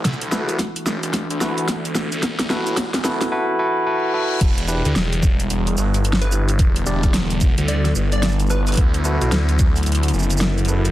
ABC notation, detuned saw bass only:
X:1
M:4/4
L:1/16
Q:"Swing 16ths" 1/4=110
K:Em
V:1 name="Detuned saw bass" clef=bass
D,,4 z2 F,,, F,,,2 D,,6 D,,- | D,,2 A,,,3 F,,,2 z8 z | E,,,3 D,, E,,,4 E,,,2 G,,,6 | E,,,2 E,,,4 E,,, D,,3 G,,,6 |
D,,3 B,,, D,,4 D,,2 F,,,6 |]